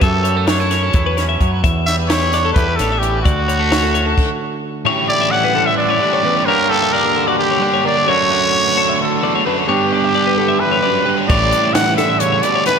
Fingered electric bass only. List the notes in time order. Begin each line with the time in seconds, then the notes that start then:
0.02 F#2
0.94 E2
1.41 F#2
1.64 E2
2.56 E2
2.80 A1
3.26 D2
11.30 A1